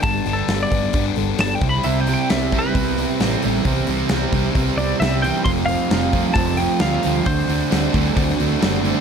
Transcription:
Already playing: B3 D4 A4
0.03 G1 G2 D3 G3 B3 D4 A5, kick, open hi-hat
0.26 G1 G2 D3 G3 B3 D4, open hi-hat
0.33 A4
0.48 G1 G2 D3 G3 B3 D4, snare, open hi-hat
0.63 D5
0.72 G1 G2 D3 G3 B3 D4, kick, open hi-hat
0.93 G1 G2 D3 G3 B3 D4, kick, open hi-hat
1.16 G1 G2 D3 G3 B3 D4 A4, open hi-hat
1.38 G1 G2 D3 G3 B3 D4 A5, snare, open hi-hat
1.42 D4
1.55 G5
1.61 C2 C3 G3 C4 E4, kick, open hi-hat
1.69 B5
1.83 C2 C3 G3 C4 E4 E5, open hi-hat
2.00 G5
2.07 C3 G3 C4 E4, open hi-hat
2.14 G5
2.30 C2 C3 G3 B3 C4 E4 E5, snare, open hi-hat
2.52 C3 G3 C4 E4, kick, open hi-hat
2.59 B4
2.74 C2 C3 G3 B3 C4 E4, kick, open hi-hat
2.97 C3 G3 C4 E4, open hi-hat
3.20 A1 C3 G3 B3 C4 E4, snare, open hi-hat
3.35 A4
3.42 A1 C3 E3 G3 C4 E4, open hi-hat
3.65 C2 C3 G3 C4 E4, kick, open hi-hat
3.87 C2 C3 G3 C4 E4, open hi-hat
4.09 C2 C3 G3 B3 C4 E4, snare, open hi-hat
4.33 C2 C3 G3 C4 E4, kick, open hi-hat
4.55 C2 C3 G3 B3 C4 E4, kick, open hi-hat
4.77 C2 C3 G3 C4 E4 D5, open hi-hat
5.00 C2 C3 G3 B3 C4 E4 E5, snare, open hi-hat
5.22 C3 E3 G3 C4 E4 G5, open hi-hat
5.45 F1 F2 C3 F3 A3 C4 F4 C6, kick, open hi-hat
5.66 F3 A3 C4 F4 F5, open hi-hat
5.70 F2 C3
5.89 F1 F2 C3 F3 A3 C4 F4, snare, open hi-hat
5.93 F3
6.13 F2 C3 F3 A3 C4 F4, kick, open hi-hat
6.34 F1 F2 C3 F3 A3 C4 F4 A5, kick, open hi-hat
6.57 F2 C3 F3 A3 C4 F4 G5, open hi-hat
6.80 D2 F2 C3 F3 A3 C4 F4 F5, snare, open hi-hat
7.03 D2 F2 C3 F3 A3 C4 F4, open hi-hat
7.25 D2 D3 A3 C4 D4 F#4 C5, kick, open hi-hat
7.48 D2 D3 A3 C4 D4 F#4, open hi-hat
7.70 D2 D3 A3 C4 D4 F#4, snare, open hi-hat
7.93 D2 D3 A3 C4 D4 F#4, kick, open hi-hat
8.16 D2 D3 A3 C4 D4 F#4, kick, open hi-hat
8.29 snare
8.39 D2 D3 A3 C4 D4 F#4, open hi-hat
8.61 F#1 D3 A3 C4 D4 F#4, snare, open hi-hat
8.83 D3 A3 C4 D4 F#4, open hi-hat

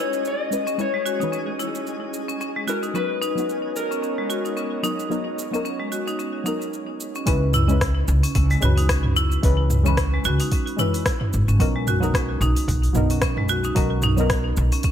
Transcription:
Already playing: E3 G#3 C#4 E4 G#4 B4 D#5
0.00 C#5
0.13 cabasa
0.25 D#5, cabasa
0.51 G#3 C#4 E4 B4, cabasa
0.67 C#4, cabasa
0.78 G#3 C#4 E4 B4 C#5, cabasa
0.94 G#3
1.06 F#4, cabasa
1.20 E3 G#3 C#4 D#4 B4, cabasa
1.32 C#4, cabasa
1.59 E4, cabasa
1.75 cabasa
1.87 cabasa
2.14 cabasa
2.28 C#4, cabasa
2.41 C#4, cabasa
2.56 G#3
2.67 G#3 C#4 E4 F#4 A#4 B4, cabasa
2.83 D#4, cabasa
2.94 F#3 B3 C#4 D#4 F#4 B4 C#5 D#5, cabasa
3.22 D#4, cabasa
3.35 F#3 B3 D#4, cabasa
3.39 F#4
3.49 cabasa
3.76 A#4, cabasa
3.91 C#4, cabasa
4.02 C#4, cabasa
4.18 G#3
4.30 F#4, cabasa
4.45 D#4, cabasa
4.57 C#4, cabasa
4.83 F#3 B3 D#4 A#4, cabasa
4.99 cabasa
5.10 F#3 B3 D#4 A#4, cabasa
5.39 cabasa
5.51 F#3 B3 C#4 D#4, cabasa
5.55 A#4
5.65 C#4, cabasa
5.80 G#3
5.92 F#4, cabasa
6.07 D#4, cabasa
6.19 C#4, cabasa
6.44 F#3 B3 D#4 A#4, cabasa
6.62 cabasa
6.73 cabasa
7.00 cabasa
7.15 C#4, cabasa
7.26 C#2 G#3 C#4 E4 B4, kick, open hi-hat, cabasa
7.54 E4, mid tom, cabasa
7.68 G#3 C#4 E4, cabasa
7.72 B4
7.81 kick, cross-stick, open hi-hat, cabasa
8.08 C#2, cabasa
8.23 C#4, open hi-hat, cabasa
8.35 C#2 C#4, kick, open hi-hat, cabasa
8.50 G#3, open hi-hat
8.60 C#2 E3 G#3 C#4 F#4 B4, mid tom, cabasa
8.78 D#4, open hi-hat, cabasa
8.89 C#4, kick, cross-stick, open hi-hat, cabasa
9.04 mid tom
9.16 E4, cabasa
9.32 cabasa
9.42 C#2 E3 G#3 C#4 B4, kick, open hi-hat, cabasa
9.70 mid tom, cabasa
9.83 E3 G#3 C#4, cabasa
9.88 B4
9.97 C#4, kick, cross-stick, open hi-hat, cabasa
10.14 G#3
10.24 C#2 F#4, cabasa
10.40 D#4, open hi-hat, cabasa
10.52 C#4, kick, open hi-hat, cabasa
10.67 open hi-hat
10.76 E3 G#3 C#4 E4, mid tom, cabasa
10.80 B4
10.94 open hi-hat, cabasa
11.06 kick, cross-stick, open hi-hat, cabasa
11.21 mid tom
11.33 G#1, cabasa
11.48 G#1 C#4, cabasa
11.59 B1 F#3 B3 C#4 D#4 A#4, kick, open hi-hat, cabasa
11.76 G#3
11.87 F#4, mid tom, cabasa
12.00 F#3 B3 D#4 A#4, cabasa
12.14 C#4, kick, cross-stick, open hi-hat, cabasa
12.41 B1 D#4, cabasa
12.57 open hi-hat, cabasa
12.68 B1, kick, open hi-hat, cabasa
12.83 open hi-hat
12.93 B1 F#3 B3 D#4, mid tom, cabasa
12.97 A#4
13.10 C#4, open hi-hat, cabasa
13.22 C#4, kick, cross-stick, open hi-hat, cabasa
13.37 G#3, mid tom
13.49 F#4, cabasa
13.64 D#4, cabasa
13.75 B1 F#3 B3 C#4 D#4 A#4, kick, open hi-hat, cabasa
14.02 D#4, mid tom, cabasa
14.16 F#3 B3 D#4 A#4, cabasa
14.30 kick, cross-stick, open hi-hat, cabasa
14.57 B1, cabasa
14.72 C#4, open hi-hat, cabasa
14.83 C#4, kick, open hi-hat, cabasa

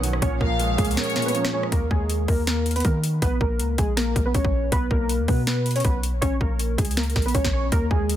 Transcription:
Already playing: B1 B2 D#3 F#3 B3 C#4 C#5 F#5 D#6
0.03 F#3, closed hi-hat
0.13 A#1, cross-stick
0.22 A#1 A#2 C#4 G#4 C#5 F5 A#5 C#6, kick, closed hi-hat
0.41 A#1 F3 A#3 A#4 F5, kick
0.60 G#3, closed hi-hat
0.78 C#2 G#3 A#3 G#4, kick, closed hi-hat
0.85 closed hi-hat
0.91 closed hi-hat
0.97 A#3 C#4 A#4 C#5, snare, closed hi-hat
1.03 closed hi-hat
1.10 closed hi-hat
1.16 A#2, snare, closed hi-hat
1.22 B4, closed hi-hat
1.26 B3, closed hi-hat
1.34 F3 C#4 C#5, closed hi-hat
1.45 cross-stick, snare
1.53 G#3 C#4 C#5
1.63 cross-stick
1.72 D#2 A#3 A#4, kick, closed hi-hat
1.91 D#2 G#3 G#4, kick
2.10 closed hi-hat
2.28 D#2 A#3 A#4, kick, open hi-hat
2.47 A#3 A#4, snare, closed hi-hat
2.66 closed hi-hat
2.71 closed hi-hat
2.76 B3 B4, closed hi-hat
2.80 closed hi-hat
2.85 D#3 A#3 A#4, kick, closed hi-hat
3.04 closed hi-hat
3.22 A#1 B3 B4, kick, closed hi-hat
3.41 A#1 A#3 A#4, kick
3.59 C#2, closed hi-hat
3.78 A#1 G#3 G#4, kick, closed hi-hat
3.97 A#3 A#4, snare, closed hi-hat
4.16 A#1, kick, closed hi-hat
4.26 B3 B4
4.34 A#1 C#4 C#5, kick, closed hi-hat
4.45 kick
4.72 B1 B3 B4, kick, closed hi-hat
4.91 B1 A#3 A#4, kick
5.09 closed hi-hat
5.20 D#2
5.28 B2 B3 B4, kick, open hi-hat
5.47 B3 B4, snare, closed hi-hat
5.66 closed hi-hat
5.71 closed hi-hat
5.76 C#4 C#5, closed hi-hat
5.80 closed hi-hat
5.84 B1 B3 B4, kick, closed hi-hat
6.03 closed hi-hat
6.13 A#1
6.22 A#1 C#4 C#5, kick, closed hi-hat
6.41 A#1 A#3 A#4, kick
6.59 closed hi-hat
6.78 C#2 G#3 G#4, kick, closed hi-hat
6.85 closed hi-hat
6.91 closed hi-hat
6.97 A#3 A#4, snare, closed hi-hat
7.03 closed hi-hat
7.10 closed hi-hat
7.16 A#1, kick, snare, closed hi-hat
7.22 B4, closed hi-hat
7.26 B3, closed hi-hat
7.34 A#1 C#4 C#5, kick, closed hi-hat
7.45 kick, snare
7.53 C#4 C#5
7.72 D#2 A#3 A#4, kick, closed hi-hat
7.91 D#2 G#3 G#4, kick
8.09 closed hi-hat

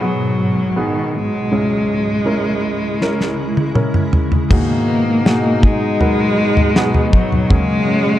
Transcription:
Already playing: G#2 B2 D#3 F#3 G#4 A#4
0.00 F#3 B3 F#4 G#4
0.76 D#3 B3 F#4 G#4
1.15 G#3
1.51 C#2 G#2 C#3 G#3 C#4 E4 G#4
2.25 C#4 E4 A#4
3.01 C#4 E4 A#4, snare
3.21 snare
3.57 high tom
3.75 C#4 E4 A#4, mid tom
3.94 mid tom
4.13 floor tom
4.32 floor tom
4.50 G#2 B2 D#3 F#3 A#3 D#4 F#4 G#4, kick, floor tom, crash
4.88 B3
5.25 B2 D#4 F#4 G#4, snare
5.62 G#3 G#4, kick
6.00 F#3 B3 D#4 F#4 A#4, floor tom
6.37 D#4
6.57 floor tom
6.75 B3 D#4 F#4 G#4, snare
6.94 floor tom
7.12 F#3 D#4, kick
7.32 floor tom
7.50 F#2 A#2 C#3 F#3 G#3 A#3 C#4 F#4 G#4, kick, floor tom
7.87 C#4

